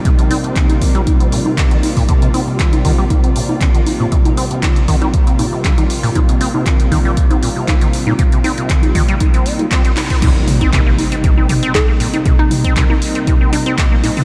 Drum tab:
CC |----------------|----------------|----------------|----------------|
HH |xxoxxxoxxxo-xxoo|xxo-xxo-xxo-xxo-|xxoxxxoxxxo-xxoo|xxo-xxo-xxo-xxo-|
CP |----x-------x---|----x-------x---|----x-------x---|----x-------x---|
T2 |----------------|----------------|----------------|----------------|
CG |--o--o--o--o--o-|--o--o--o--o--o-|-o--o--o--o--o--|o--o--o--o--o--o|
BD |o---o-o-o---o--o|o---o-o-o---o---|o---o-o-o---o---|o---o-o-o---o---|

CC |----------------|x---------------|----------------|
HH |xxoxxxoxxxoxxxoo|x-oxx-oxx-oxx-ox|x-oxx-oxx-oxx-oo|
CP |----x-------x-x-|----x-------x---|----x-------x---|
T2 |----------------|--o-------o-----|--o------------o|
CG |--o--o--o--o--o-|o--o--o--o--o--o|--o--o--o--o--o-|
BD |o---o-o-o---o--o|o--oo---o---o---|o--oo---o---o---|